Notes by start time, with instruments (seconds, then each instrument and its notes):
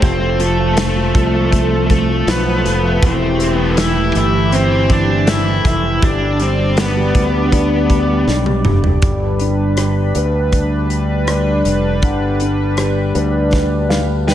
0.01 fingered electric bass F1, grand piano F3, analog synth pad F3 A3 A4, lead electric guitar C4 C5, kick, closed hi-hat
0.20 grand piano F3
0.39 grand piano F3, lead electric guitar A3 A4, closed hi-hat
0.58 grand piano F3
0.77 grand piano F3, snare, closed hi-hat
0.96 grand piano F3
1.14 fingered electric bass C2, grand piano F3, kick, closed hi-hat
1.33 grand piano F3
1.51 grand piano A3, kick, closed hi-hat
1.71 grand piano F3
1.90 grand piano F3, lead electric guitar A3 A4, kick, closed hi-hat
2.09 grand piano F3
2.27 fingered electric bass B1, grand piano F3, lead electric guitar B3 B4, snare, closed hi-hat
2.46 grand piano F3
2.65 fingered electric bass F1, grand piano F3, snare, closed hi-hat
2.83 grand piano F3
3.01 fingered electric bass E1, grand piano E3, analog synth pad E3 G4, kick, closed hi-hat
3.05 lead electric guitar C4 C5
3.19 grand piano E3
3.39 grand piano E3, closed hi-hat
3.54 grand piano E3, lead electric guitar B4
3.77 grand piano E3, lead electric guitar E4 E5, snare, closed hi-hat
3.96 grand piano E3
4.14 fingered electric bass G1, grand piano E3, lead electric guitar E5, closed hi-hat
4.18 lead electric guitar E4
4.34 grand piano E3
4.52 grand piano C4, lead electric guitar C4 C5, closed hi-hat
4.71 grand piano E3
4.90 grand piano E3, lead electric guitar D4 D5, kick, closed hi-hat
5.08 grand piano E3
5.27 grand piano E3, lead electric guitar E4 E5, snare, closed hi-hat
5.47 grand piano E3
5.64 fingered electric bass F1, grand piano E3, lead electric guitar E4 E5, kick, snare, closed hi-hat
5.83 grand piano E3
6.02 fingered electric bass G1, analog synth pad G3 D4 D5, grand piano G3, lead electric guitar D4 D5, kick, closed hi-hat
6.21 grand piano G3
6.39 grand piano G3, lead electric guitar C4 C5, closed hi-hat
6.58 grand piano G3
6.77 grand piano G3, lead electric guitar B3 B4, snare, closed hi-hat
6.96 grand piano G3
7.15 fingered electric bass D2, grand piano G3, kick, closed hi-hat
7.34 grand piano G3
7.52 grand piano D4, kick, closed hi-hat
7.70 grand piano G3
7.89 grand piano G3, kick, closed hi-hat
8.09 grand piano G3
8.27 fingered electric bass B1, grand piano G3, snare
8.46 grand piano G3, high tom
8.65 fingered electric bass F1, grand piano G3, mid tom
8.83 grand piano G3, floor tom
9.02 fingered electric bass G1, grand piano G3, analog synth pad G3 D4 B4, kick, closed hi-hat
9.39 grand piano D4, closed hi-hat
9.77 grand piano G4, cross-stick, closed hi-hat
10.15 fingered electric bass D2, grand piano B4, closed hi-hat
10.52 kick, closed hi-hat
10.90 closed hi-hat
11.27 grand piano D5, cross-stick, closed hi-hat
11.65 fingered electric bass F1, cross-stick, closed hi-hat
12.02 fingered electric bass G1, grand piano D3, kick, closed hi-hat
12.40 grand piano D4, closed hi-hat
12.77 grand piano G4, cross-stick, closed hi-hat
13.15 fingered electric bass D2, grand piano B4 D5, closed hi-hat
13.53 grand piano D5, kick, snare
13.89 grand piano F5, snare
14.27 lead electric guitar B4, grand piano D5 G5, snare